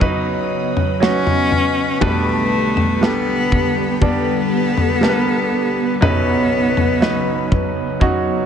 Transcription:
0.00 1.97 B1 medium
0.00 1.97 F#2 medium
0.00 1.97 C#3 medium
0.00 1.00 F#3 medium
0.00 1.97 F#3 medium
0.00 8.46 B3 medium
0.00 1.01 C#4 medium
0.00 0.52 D#4 loud
0.00 1.01 D#4 medium
0.00 0.02 B4 medium
0.00 3.98 B4 medium
0.00 0.97 B4 medium
0.00 1.98 D#5 medium
0.00 kick medium
0.00 floor tom medium
0.77 floor tom medium
1.00 1.96 F#3 medium
1.00 1.96 C#4 medium
1.00 1.99 C#4 loud
1.00 1.96 D#4 medium
1.00 1.97 F#4 medium
1.00 snare loud
1.27 floor tom medium
1.52 floor tom medium
2.01 5.97 B1 medium
2.01 5.98 B2 medium
2.01 5.97 D3 medium
2.01 2.96 G3 medium
2.01 5.97 G3 medium
2.01 3.05 A3 loud
2.01 2.96 B3 medium
2.01 2.97 D4 medium
2.01 5.97 G4 medium
2.01 2.97 B4 medium
2.01 kick loud
2.01 floor tom loud
2.77 floor tom medium
3.01 3.96 G3 medium
3.01 3.97 B3 medium
3.01 4.03 B3 loud
3.01 3.97 D4 medium
3.01 3.97 A4 medium
3.01 snare medium
3.52 kick medium
3.52 floor tom medium
4.01 4.96 G3 medium
4.01 4.97 B3 medium
4.01 5.98 B3 loud
4.01 4.97 D4 medium
4.01 6.00 A4 medium
4.01 4.97 D5 medium
4.01 kick medium
4.01 floor tom medium
4.77 floor tom medium
5.01 5.96 G3 medium
5.01 5.97 B3 medium
5.01 5.97 D4 medium
5.01 5.08 A#4 medium
5.01 snare loud
5.09 6.00 B4 medium
6.01 8.46 B1 medium
6.01 8.46 F#2 medium
6.01 8.46 C#3 medium
6.01 6.96 F#3 medium
6.01 8.46 F#3 medium
6.01 7.98 B3 loud
6.01 6.97 C#4 medium
6.01 6.97 D#4 medium
6.01 8.46 D#4 medium
6.01 8.00 B4 medium
6.01 6.97 B4 loud
6.01 floor tom medium
6.77 floor tom medium
7.01 7.96 F#3 medium
7.01 7.96 C#4 medium
7.01 7.97 D#4 medium
7.01 7.97 B4 medium
7.01 snare medium
7.52 kick medium
7.52 floor tom medium
8.00 8.46 F#3 medium
8.00 8.46 C#4 medium
8.00 8.46 D#4 medium
8.00 8.46 F#4 medium
8.00 8.46 C#5 medium
8.00 kick medium
8.00 floor tom medium

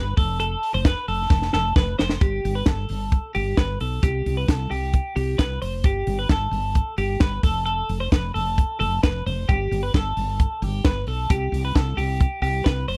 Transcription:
0.00 0.13 G1 loud
0.00 0.17 B4 medium
0.17 0.54 F1 medium
0.17 0.39 A4 medium
0.17 kick loud
0.17 open hi-hat medium
0.40 0.72 A4 loud
0.40 closed hi-hat medium
0.63 open hi-hat medium
0.74 0.93 F1 loud
0.74 0.85 C5 medium
0.85 1.08 B4 medium
0.85 kick loud
0.85 snare loud
0.85 closed hi-hat medium
1.08 1.27 F1 medium
1.08 1.51 A4 medium
1.08 open hi-hat medium
1.30 1.49 F1 loud
1.30 kick loud
1.30 snare medium
1.42 snare medium
1.53 1.72 F1 loud
1.53 1.76 A4 medium
1.53 snare medium
1.76 1.95 F1 loud
1.76 1.98 B4 medium
1.76 kick loud
1.76 snare medium
1.99 2.18 F1 medium
1.99 2.21 C5 medium
1.99 snare loud
2.09 snare medium
2.21 2.40 G1 medium
2.21 2.53 G4 medium
2.21 kick loud
2.21 closed hi-hat medium
2.45 2.63 G1 loud
2.45 open hi-hat medium
2.55 2.67 B4 medium
2.66 2.85 G1 loud
2.66 3.31 A4 medium
2.66 kick loud
2.66 snare loud
2.66 closed hi-hat medium
2.89 3.17 G1 medium
2.89 open hi-hat medium
3.12 kick loud
3.12 closed hi-hat medium
3.35 3.54 G1 loud
3.35 3.58 G4 medium
3.35 open hi-hat medium
3.57 3.76 G1 medium
3.57 3.80 B4 medium
3.57 kick loud
3.57 snare loud
3.57 closed hi-hat medium
3.80 3.99 B1 medium
3.80 4.03 A4 medium
3.80 open hi-hat medium
4.03 4.22 C2 loud
4.03 4.35 G4 medium
4.03 kick loud
4.03 closed hi-hat medium
4.26 4.45 C2 medium
4.26 open hi-hat medium
4.37 4.48 B4 medium
4.48 4.67 C2 loud
4.48 4.71 A4 medium
4.48 kick loud
4.48 snare loud
4.48 closed hi-hat medium
4.71 4.99 C2 medium
4.71 5.14 G4 medium
4.71 open hi-hat medium
4.93 kick medium
4.93 closed hi-hat medium
5.16 5.35 C2 loud
5.16 5.39 G4 medium
5.16 open hi-hat medium
5.38 5.58 C2 medium
5.38 5.61 B4 medium
5.38 kick loud
5.38 snare loud
5.38 closed hi-hat medium
5.62 5.84 F1 medium
5.62 5.85 C5 medium
5.62 open hi-hat medium
5.84 6.03 G1 loud
5.84 6.17 G4 medium
5.84 kick loud
5.84 closed hi-hat medium
6.07 6.26 G1 medium
6.07 open hi-hat medium
6.19 6.30 B4 medium
6.29 6.49 G1 medium
6.29 6.95 A4 medium
6.29 kick loud
6.29 snare medium
6.29 closed hi-hat medium
6.51 6.80 G1 medium
6.51 open hi-hat medium
6.75 kick loud
6.75 closed hi-hat medium
6.98 7.17 G1 loud
6.98 7.21 G4 medium
6.98 open hi-hat medium
7.20 7.40 G1 medium
7.20 7.43 B4 medium
7.20 kick loud
7.20 snare loud
7.20 closed hi-hat medium
7.43 7.81 F1 medium
7.43 7.64 A4 medium
7.43 kick loud
7.43 open hi-hat medium
7.66 7.98 A4 medium
7.66 closed hi-hat medium
7.89 8.08 F1 medium
7.89 open hi-hat medium
8.00 8.12 C5 medium
8.12 8.31 F1 loud
8.12 8.34 B4 medium
8.12 kick loud
8.12 snare loud
8.12 closed hi-hat medium
8.34 8.63 F1 medium
8.34 8.77 A4 medium
8.34 open hi-hat medium
8.58 kick loud
8.58 closed hi-hat medium
8.80 8.99 F1 loud
8.80 9.03 A4 medium
8.80 open hi-hat medium
9.03 9.22 F1 medium
9.03 9.26 B4 medium
9.03 kick medium
9.03 snare loud
9.03 closed hi-hat medium
9.26 9.45 F1 medium
9.26 9.49 C5 medium
9.26 open hi-hat medium
9.49 9.67 G1 loud
9.49 9.81 G4 loud
9.49 kick loud
9.49 closed hi-hat medium
9.71 9.90 G1 medium
9.71 open hi-hat medium
9.83 9.94 B4 medium
9.94 10.13 G1 loud
9.94 10.64 A4 medium
9.94 kick loud
9.94 snare medium
9.94 closed hi-hat medium
10.17 10.45 G1 medium
10.17 open hi-hat medium
10.39 kick loud
10.39 closed hi-hat medium
10.62 10.80 G1 loud
10.62 10.85 G4 medium
10.62 open hi-hat medium
10.85 11.03 G1 medium
10.85 11.07 B4 medium
10.85 kick loud
10.85 snare loud
10.85 closed hi-hat medium
11.07 11.26 B1 medium
11.07 11.30 A4 medium
11.07 open hi-hat medium
11.30 11.49 C2 loud
11.30 11.62 G4 medium
11.30 kick loud
11.30 closed hi-hat medium
11.52 11.71 C2 loud
11.52 open hi-hat medium
11.65 11.75 B4 medium
11.75 11.94 C2 loud
11.75 11.98 A4 medium
11.75 kick loud
11.75 snare loud
11.75 closed hi-hat medium
11.97 12.25 C2 medium
11.97 12.40 G4 medium
11.97 open hi-hat medium
12.20 kick loud
12.20 closed hi-hat medium
12.42 12.61 C2 loud
12.42 12.65 G4 medium
12.42 open hi-hat medium
12.64 12.84 C2 loud
12.64 12.88 B4 medium
12.64 kick loud
12.64 snare loud
12.64 closed hi-hat medium
12.88 12.97 F1 medium
12.88 12.97 C5 medium
12.88 open hi-hat medium

